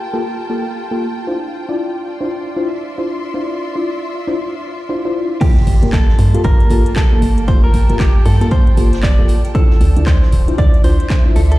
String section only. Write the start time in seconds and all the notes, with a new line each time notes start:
Already playing: F4 A#4 G5 A5
1.94 D5
2.09 C6
2.65 E5
5.61 A#3
5.95 A5
6.84 G5
9.79 D5
10.59 E5
11.42 C6